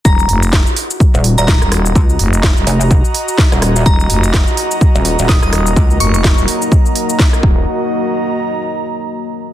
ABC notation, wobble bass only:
X:1
M:4/4
L:1/16
Q:"Swing 16ths" 1/4=126
K:Ebm
V:1 name="Wobble bass" clef=bass
z8 z E,,,2 E,,,2 z3 | D,,2 z4 F,,,3 z4 E,,,3 | z8 z E,,,2 E,,,2 z3 | D,,2 z12 z2 |
z16 |]